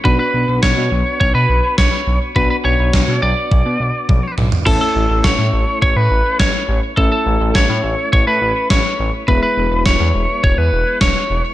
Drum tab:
CC |----------------|----------------|x---------------|----------------|
SD |----o-------o---|----o-----------|----o-------o---|----o-------o---|
T1 |----------------|------------o---|----------------|----------------|
T2 |----------------|--------------o-|----------------|----------------|
FT |----------------|---------------o|----------------|----------------|
BD |o---o---o---o---|o---o---o---o---|o---o---o---o---|o---o---o---o---|

CC |----------------|
SD |----o-------o---|
T1 |----------------|
T2 |----------------|
FT |----------------|
BD |o---o---o---o---|